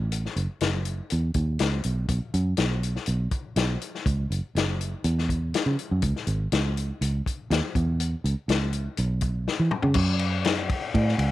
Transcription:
Already playing: A1
0.12 closed hi-hat
0.26 snare
0.36 F#1, closed hi-hat
0.61 F#1, snare, closed hi-hat
0.85 closed hi-hat
1.10 E2, closed hi-hat
1.34 D#2, kick, closed hi-hat
1.59 C#2, snare, closed hi-hat
1.83 B1, closed hi-hat
2.08 B1, kick, closed hi-hat
2.34 F#2, closed hi-hat
2.57 B1, snare, closed hi-hat
2.83 closed hi-hat
2.96 snare
3.06 B1, closed hi-hat
3.31 kick, closed hi-hat
3.56 B1, snare, closed hi-hat
3.81 closed hi-hat
3.95 snare
4.06 C#2, kick, closed hi-hat
4.30 F#1, closed hi-hat
4.55 F#1, snare, closed hi-hat
4.81 closed hi-hat
5.04 E2, closed hi-hat
5.18 snare
5.29 kick, closed hi-hat
5.54 snare, closed hi-hat
5.66 C#3
5.79 closed hi-hat
5.91 F#2
6.02 C#2, kick, closed hi-hat
6.16 snare
6.27 G#1, closed hi-hat
6.52 C#2, snare, closed hi-hat
6.77 closed hi-hat
7.01 C#2, closed hi-hat
7.26 kick, closed hi-hat
7.50 D#2, snare, closed hi-hat
7.75 E2, kick, closed hi-hat
8.00 closed hi-hat
8.24 C#2, closed hi-hat
8.48 C#2, snare, closed hi-hat
8.73 closed hi-hat
8.97 B1, closed hi-hat
9.21 kick, closed hi-hat
9.48 snare
9.59 E3
9.71 mid tom
9.82 C#3, floor tom
9.94 F#2, kick, crash
10.19 ride
10.45 snare, ride
10.69 kick, ride
10.94 A2, kick, ride
11.08 snare
11.18 C#2, ride

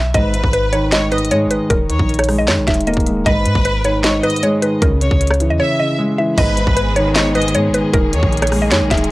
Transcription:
Already playing: B1 E5
0.14 G#1 G#2 B4 D#5, kick, closed hi-hat
0.34 G#2, closed hi-hat
0.44 G#1, kick
0.53 B4, closed hi-hat
0.73 D#3 C#5, closed hi-hat
0.92 G#2 C#5 D#5, snare, clap, closed hi-hat
1.11 G#2 B4 D#5, closed hi-hat
1.18 closed hi-hat
1.25 closed hi-hat
1.31 G#2 G#3 C#5, closed hi-hat
1.46 G#1
1.51 D#3 B4, closed hi-hat
1.70 D#1 D#3 A#4, kick, closed hi-hat
1.90 D#2 D#3 C#5, closed hi-hat
1.99 A#1, kick
2.09 closed hi-hat
2.14 closed hi-hat
2.19 C#5, cross-stick, closed hi-hat
2.24 closed hi-hat
2.29 G#3, cross-stick, open hi-hat
2.38 D#5
2.48 F#2 D#3 C#5, snare, clap, closed hi-hat
2.58 A#1
2.67 D#1 D#3 E5, kick, snare, closed hi-hat
2.74 closed hi-hat
2.81 closed hi-hat
2.87 A#3 D#5, closed hi-hat
2.94 D#1, kick, closed hi-hat
3.00 closed hi-hat
3.07 G#3, closed hi-hat
3.26 G#1 G#2 B4 D#5, kick, closed hi-hat
3.45 G#2, closed hi-hat
3.55 G#1, kick
3.65 B4, closed hi-hat
3.84 D#3 C#5, closed hi-hat
4.04 G#2 C#5 D#5, snare, clap, closed hi-hat
4.23 G#2 B4 D#5, closed hi-hat
4.30 closed hi-hat
4.36 closed hi-hat
4.43 G#3 C#5, closed hi-hat
4.62 D#3 B4, closed hi-hat
4.82 C#2 C#3 A#4, kick, closed hi-hat
5.01 C#3 C#5, closed hi-hat
5.11 C#2, kick
5.21 closed hi-hat
5.27 C#5, cross-stick, closed hi-hat
5.34 closed hi-hat
5.40 E3, closed hi-hat
5.50 E2 D#5
5.59 C#3 C#5 E5
5.79 C#3 D#5
5.99 G#3
6.18 E3 E5
6.38 G#1 G#2 D#3 G#3 B3 G#4 B4 D#5, kick, closed hi-hat, crash
6.57 G#2, closed hi-hat
6.67 G#1, kick
6.77 B4, closed hi-hat
6.96 D#3 C#5, closed hi-hat
7.16 G#2 C#5 D#5, snare, clap, closed hi-hat
7.35 G#2 B4 D#5, closed hi-hat
7.42 closed hi-hat
7.48 closed hi-hat
7.55 G#2 G#3 C#5, closed hi-hat
7.69 G#1
7.74 D#3 B4, closed hi-hat
7.93 D#1 D#3 G#3 A#3 A#4, kick, closed hi-hat
8.13 D#2 D#3 C#5, closed hi-hat
8.23 A#1, kick
8.33 closed hi-hat
8.37 closed hi-hat
8.42 C#5, cross-stick, closed hi-hat
8.47 closed hi-hat
8.52 G#3, cross-stick, open hi-hat
8.62 D#5
8.71 F#2 D#3 C#5, snare, clap, closed hi-hat
8.81 A#1
8.91 D#1 D#3 E5, kick, snare, closed hi-hat
8.97 closed hi-hat
9.04 closed hi-hat

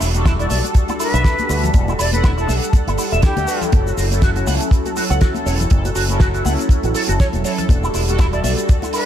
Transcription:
Already playing: G3 D4 F#4 A4
0.00 E1 E4, open hi-hat, muted conga, shaker
0.14 G3 D4 F#4 A4, closed hi-hat, high conga, shaker
0.25 E4, kick, snare, closed hi-hat, muted conga, shaker
0.39 E4 D5, closed hi-hat, shaker
0.50 B1 D5 E5, open hi-hat, high conga, shaker
0.64 closed hi-hat, muted conga, shaker
0.75 kick, closed hi-hat, shaker
0.88 E4, closed hi-hat, muted conga, high conga, shaker
1.00 E4 B4, open hi-hat, shaker
1.14 B1 E5, closed hi-hat, shaker
1.24 E4, kick, snare, closed hi-hat, muted conga, shaker
1.39 closed hi-hat, high conga, shaker
1.49 D2 B4, open hi-hat, muted conga, shaker
1.63 cross-stick, closed hi-hat, low conga, shaker
1.74 E1 G3 D4 F#4 A4, kick, closed hi-hat, high conga, shaker
1.88 E4, muted conga, shaker
1.99 E1 E4 D5, open hi-hat, shaker
2.12 G3 D4 A4 B4 F#5, closed hi-hat, muted conga, high conga, shaker
2.24 E4, kick, snare, closed hi-hat, shaker
2.38 E4 A4, closed hi-hat, shaker
2.48 B1 E5, open hi-hat, muted conga, high conga, shaker
2.63 closed hi-hat, shaker
2.73 kick, closed hi-hat, muted conga, shaker
2.87 G1 E4, closed hi-hat, high conga, shaker
2.98 E4, open hi-hat, shaker
3.12 E1 E5, closed hi-hat, muted conga, shaker
3.22 E4 G4, kick, snare, closed hi-hat, shaker
3.37 D2, closed hi-hat, muted conga, high conga, shaker
3.48 B4, open hi-hat, shaker
3.61 cross-stick, closed hi-hat, low conga, shaker
3.72 F#1 F#3 C#4 E4 A4, kick, closed hi-hat, muted conga, high conga, shaker
3.87 F#4, shaker
3.97 F#1 F#4, open hi-hat, muted conga, shaker
4.10 F#3 C#4 E4 A4, closed hi-hat, high conga, shaker
4.22 F#4, kick, snare, closed hi-hat, shaker
4.36 F#4, closed hi-hat, muted conga, shaker
4.47 C#2 F#5, open hi-hat, high conga, shaker
4.60 closed hi-hat, muted conga, shaker
4.71 kick, closed hi-hat, shaker
4.86 F#4, closed hi-hat, high conga, shaker
4.97 F#4, open hi-hat, muted conga, shaker
5.10 C#2 F#5, closed hi-hat, shaker
5.21 F#4, kick, snare, closed hi-hat, muted conga, shaker
5.34 closed hi-hat, high conga, shaker
5.46 E1 C#5, open hi-hat, shaker
5.59 cross-stick, closed hi-hat, muted conga, low conga, shaker
5.70 F#1 F#3 C#4 E4 A4, kick, closed hi-hat, high conga, shaker
5.85 F#4, closed hi-hat, muted conga, shaker
5.95 F#1 F#4, open hi-hat, shaker
6.08 F#3 C#4 E4 A4, closed hi-hat, high conga, shaker
6.20 F#4, kick, snare, closed hi-hat, muted conga, shaker
6.34 F#4, closed hi-hat, shaker
6.45 C#2 F#5, cross-stick, open hi-hat, muted conga, high conga, shaker
6.59 closed hi-hat, shaker
6.69 kick, closed hi-hat, shaker
6.83 A1 F#4, closed hi-hat, muted conga, high conga, shaker
6.94 A4, open hi-hat, shaker
7.08 F#1 F#4, closed hi-hat, muted conga, shaker
7.20 C#5, kick, snare, closed hi-hat, shaker
7.33 E1, closed hi-hat, high conga, shaker
7.44 F#3 C#4 E4 A4 C#5, open hi-hat, muted conga, shaker
7.58 cross-stick, closed hi-hat, low conga, shaker
7.68 E1 G3 D4 F#4 A4, kick, closed hi-hat, high conga, shaker
7.83 E4, shaker
7.94 E1 E4, open hi-hat, muted conga, shaker
8.07 G3 D4 F#4 A4, closed hi-hat, high conga, shaker
8.19 E4, kick, snare, closed hi-hat, muted conga, shaker
8.33 E4 D5, closed hi-hat, shaker
8.44 B1 D5 E5, open hi-hat, high conga, shaker
8.57 closed hi-hat, muted conga, shaker
8.69 kick, closed hi-hat, shaker
8.82 E4, closed hi-hat, muted conga, high conga, shaker
8.93 E4 B4, open hi-hat, shaker

